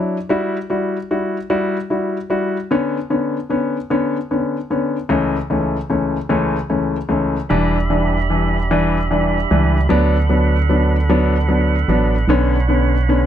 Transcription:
0.00 0.16 F#3 medium
0.00 0.16 D4 medium
0.00 0.17 E4 medium
0.29 0.56 G3 medium
0.29 0.56 E4 medium
0.29 0.56 F#4 medium
0.70 0.96 G3 medium
0.70 0.96 E4 medium
0.70 0.96 F#4 medium
1.11 1.36 G3 medium
1.11 1.37 E4 medium
1.11 1.37 F#4 medium
1.50 1.76 G3 medium
1.50 1.76 E4 medium
1.50 1.76 F#4 medium
1.90 2.16 G3 medium
1.90 2.16 E4 soft
1.90 2.17 F#4 medium
2.30 2.56 G3 medium
2.30 2.56 E4 medium
2.30 2.56 F#4 medium
2.71 2.97 D3 medium
2.71 2.97 B3 medium
2.71 2.97 C#4 medium
3.10 3.36 D3 medium
3.10 3.36 B3 medium
3.10 3.36 C#4 medium
3.50 3.76 D3 medium
3.50 3.76 B3 medium
3.50 3.76 C#4 medium
3.90 4.16 D3 medium
3.90 4.16 B3 medium
3.90 4.16 C#4 medium
4.31 4.56 D3 medium
4.31 4.56 B3 medium
4.31 4.56 C#4 medium
4.70 4.96 D3 medium
4.70 4.96 B3 medium
4.70 4.96 C#4 medium
5.09 5.35 C#2 medium
5.09 5.35 E3 medium
5.09 5.36 A3 medium
5.09 5.36 C#4 medium
5.50 5.76 C#2 medium
5.50 5.76 E3 medium
5.50 5.76 A3 medium
5.50 5.76 C#4 medium
5.90 6.15 C#2 medium
5.90 6.16 E3 medium
5.90 6.16 A3 medium
5.90 6.16 C#4 medium
6.29 6.55 C#2 medium
6.29 6.55 E3 medium
6.29 6.56 A3 medium
6.29 6.56 C#4 medium
6.70 6.96 C#2 soft
6.70 6.96 E3 soft
6.70 6.96 A3 soft
6.70 6.96 C#4 medium
7.09 7.35 C#2 medium
7.09 7.36 E3 soft
7.09 7.36 A3 medium
7.09 7.36 C#4 medium
7.49 9.47 E1 medium
7.49 7.76 E3 medium
7.49 7.76 G3 medium
7.49 9.87 D4 medium
7.49 7.76 D4 medium
7.49 9.88 G4 soft
7.49 9.88 E5 soft
7.49 13.26 B5 medium
7.90 8.16 E3 medium
7.90 8.16 G3 medium
7.90 8.16 D4 medium
8.30 8.56 E3 medium
8.30 8.57 G3 medium
8.30 8.57 D4 medium
8.71 8.97 E3 medium
8.71 8.97 G3 medium
8.71 8.97 D4 medium
9.11 9.36 E3 medium
9.11 9.37 G3 medium
9.11 9.37 D4 medium
9.51 9.88 C#2 medium
9.51 9.77 E3 medium
9.51 9.77 G3 medium
9.51 9.77 D4 medium
9.89 11.85 D2 medium
9.89 10.15 F#3 medium
9.89 10.16 B3 medium
9.89 10.16 D4 loud
9.89 13.26 D4 medium
9.89 12.26 A4 soft
9.89 13.26 F#5 medium
10.29 10.56 F#3 medium
10.29 10.55 B3 medium
10.29 10.56 D4 medium
10.69 10.95 F#3 medium
10.69 10.95 B3 medium
10.69 10.96 D4 medium
11.09 11.35 F#3 medium
11.09 11.35 B3 medium
11.09 11.35 D4 medium
11.48 11.74 F#3 medium
11.48 11.75 B3 medium
11.48 11.75 D4 medium
11.88 12.26 A1 medium
11.88 12.14 F#3 medium
11.88 12.15 B3 medium
11.88 12.15 D4 medium
12.28 13.26 B1 loud
12.28 12.54 D3 medium
12.28 12.55 B3 medium
12.28 12.55 C#4 medium
12.28 13.26 C#5 soft
12.69 12.94 D3 medium
12.69 12.95 B3 medium
12.69 12.95 C#4 medium
13.09 13.26 D3 medium
13.09 13.26 B3 medium
13.09 13.26 C#4 medium

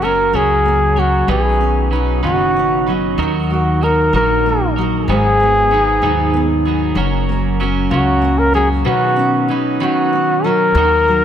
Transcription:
0.00 0.30 F#1 medium
0.00 1.28 F#2 medium
0.00 0.96 F#3 soft
0.00 0.34 F#3 medium
0.00 0.64 A#3 medium
0.00 1.35 C#4 medium
0.00 0.34 C#4 medium
0.00 0.33 F#4 medium
0.00 0.37 A#4 medium
0.04 0.32 A#4 medium
0.33 1.24 C#2 medium
0.33 1.35 C#3 medium
0.33 1.28 F#3 medium
0.33 0.98 C#4 medium
0.33 0.97 F#4 medium
0.33 1.01 G#4 medium
0.33 0.95 A#4 medium
0.66 1.35 A#3 soft
0.96 2.87 F#3 medium
0.96 1.28 C#4 soft
0.96 1.28 F#4 soft
0.96 1.30 F#4 medium
0.96 1.28 A#4 medium
1.27 2.19 B1 medium
1.27 1.91 B2 medium
1.27 3.18 B2 medium
1.27 1.94 D#3 medium
1.27 1.90 F#3 medium
1.27 1.90 C#4 medium
1.27 1.92 D#4 medium
1.27 1.89 G#4 medium
1.27 1.92 B4 medium
1.61 2.55 C#4 soft
1.91 2.23 F#3 medium
1.91 2.22 C#4 medium
1.91 2.22 D#4 medium
1.91 3.82 D#4 medium
1.91 2.22 B4 medium
2.23 3.14 F#1 medium
2.23 2.87 B2 medium
2.23 2.91 D#3 medium
2.23 3.19 D#3 medium
2.23 2.88 F#3 medium
2.23 2.87 C#4 medium
2.23 2.87 D#4 medium
2.23 2.91 F#4 medium
2.23 2.85 B4 medium
2.57 3.26 C#4 soft
2.87 4.14 F#3 soft
2.87 3.17 F#3 soft
2.87 3.19 C#4 soft
2.87 3.18 D#4 soft
2.87 3.18 B4 soft
3.18 4.09 D#2 medium
3.18 4.15 D#3 medium
3.18 5.09 D#3 medium
3.18 3.81 F#3 medium
3.18 3.82 D#4 medium
3.18 3.83 F#4 medium
3.18 3.82 A#4 medium
3.51 4.45 A#3 soft
3.51 3.85 F#4 medium
3.81 4.13 F#3 soft
3.81 5.15 D#4 medium
3.81 4.13 D#4 soft
3.81 4.13 F#4 medium
3.81 4.14 A#4 medium
3.81 4.12 A#4 medium
4.13 5.04 A#1 medium
4.13 5.08 D#3 medium
4.13 4.78 F#3 medium
4.13 5.09 F#3 medium
4.13 4.78 D#4 medium
4.13 4.77 F#4 medium
4.13 4.75 A#4 medium
4.13 4.73 A#4 medium
4.46 5.15 A#3 soft
4.76 6.65 F#3 medium
4.76 5.09 D#4 soft
4.76 5.08 F#4 soft
4.76 5.08 A#4 soft
5.08 5.99 G#1 medium
5.08 5.71 G#2 medium
5.08 6.96 G#2 medium
5.08 5.72 D#3 medium
5.08 5.71 F#3 medium
5.08 5.71 B3 medium
5.08 5.72 D#4 medium
5.08 5.72 G#4 medium
5.08 6.63 G#4 loud
5.40 6.33 B3 soft
5.71 6.03 F#3 medium
5.71 6.02 B3 medium
5.71 7.03 D#4 medium
5.71 6.02 D#4 medium
5.71 6.02 G#4 medium
6.02 6.92 D#2 medium
6.02 6.67 G#2 medium
6.02 7.03 D#3 medium
6.02 6.66 D#3 medium
6.02 6.68 F#3 medium
6.02 6.66 B3 medium
6.02 6.65 D#4 medium
6.02 6.64 G#4 medium
6.34 7.03 B3 soft
6.65 8.53 F#3 medium
6.65 6.95 F#3 soft
6.65 6.96 B3 soft
6.65 6.97 D#4 medium
6.65 6.97 G#4 medium
6.95 7.86 F#1 medium
6.95 8.84 F#2 medium
6.95 7.59 F#3 medium
6.95 7.60 C#4 medium
6.95 7.61 F#4 medium
6.95 7.60 A#4 medium
7.29 8.20 A#3 soft
7.60 7.91 F#3 medium
7.60 8.92 C#4 medium
7.60 7.91 C#4 medium
7.60 7.91 F#4 medium
7.60 7.90 A#4 medium
7.91 8.82 C#2 medium
7.91 8.92 C#3 medium
7.91 8.85 F#3 medium
7.91 8.56 C#4 medium
7.91 8.40 F#4 medium
7.91 8.55 F#4 medium
7.91 8.53 A#4 medium
8.22 8.92 A#3 medium
8.38 8.54 A#4 medium
8.54 10.44 F#3 medium
8.54 8.85 C#4 soft
8.54 8.86 F#4 soft
8.54 8.69 G#4 medium
8.54 8.86 A#4 medium
8.85 10.76 B2 medium
8.85 9.49 B2 medium
8.85 9.53 D#3 medium
8.85 9.49 F#3 medium
8.85 9.49 C#4 medium
8.85 9.50 D#4 medium
8.85 9.54 F#4 medium
8.85 9.50 B4 medium
9.16 10.11 C#4 medium
9.48 9.80 F#3 medium
9.48 9.80 C#4 medium
9.48 11.24 D#4 medium
9.48 9.80 D#4 medium
9.48 9.79 B4 medium
9.80 10.45 B2 medium
9.80 10.75 D#3 medium
9.80 10.49 D#3 medium
9.80 10.46 F#3 medium
9.80 10.44 C#4 medium
9.80 10.44 D#4 medium
9.80 10.47 F#4 medium
9.80 10.44 B4 medium
10.13 10.83 C#4 medium
10.44 11.08 F#3 medium
10.44 10.76 F#3 soft
10.44 10.77 C#4 medium
10.44 10.76 D#4 medium
10.44 11.24 A#4 loud
10.75 11.24 D#2 loud
10.75 11.24 D#3 medium
10.75 11.24 F#3 medium
10.75 11.24 D#4 medium
10.75 11.24 F#4 medium
10.75 11.24 A#4 medium
11.08 11.24 F#3 medium

